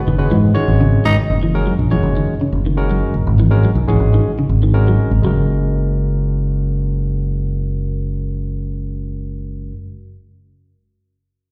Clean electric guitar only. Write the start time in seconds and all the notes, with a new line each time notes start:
0.08 D#3
0.31 E3
0.56 D#3
0.81 C#3
1.05 D#3
1.43 E3
1.67 F#3
1.92 E3
2.17 D#3
2.41 C#3
2.66 D#3
2.91 F#3
3.40 E3
3.65 F#3
3.90 E3
4.14 D#3
4.39 C#3
4.63 D#3
4.88 F#3
5.25 F#3